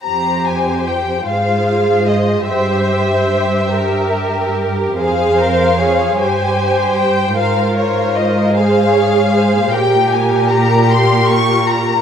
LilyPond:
<<
  \new Staff \with { instrumentName = "Violin section" } { \time 6/8 \key f \minor \tempo 4. = 50 bes''8 aes''8 g''8 f''4 ees''8 | e''2~ e''8 r8 | f''4. aes''4 g''8 | f''8 des''8 ees''8 f''4. |
g''8 aes''8 bes''8 c'''8 des'''8 bes''8 | }
  \new Staff \with { instrumentName = "Viola section" } { \time 6/8 \key f \minor r4. aes'4. | c''4. bes'4. | aes'8 c''8 des''8 c''4. | bes'4. aes'4. |
g'4. f'4. | }
  \new Staff \with { instrumentName = "Violin section" } { \time 6/8 \key f \minor << { c''4. c''4.~ | c''4. bes'4. | c''2.~ | c''4. c''8 des''8 c''8 |
bes'2. | } \\ { g'4. f'4. | g'4. g'4. | aes'8 bes'8 aes'8 g'4. | f'4. aes'4. |
g'2. | } >> }
  \new Staff \with { instrumentName = "Cello section" } { \clef bass \time 6/8 \key f \minor f,4. aes,4. | g,2. | f,4. g,4. | aes,2. |
bes,2. | }
>>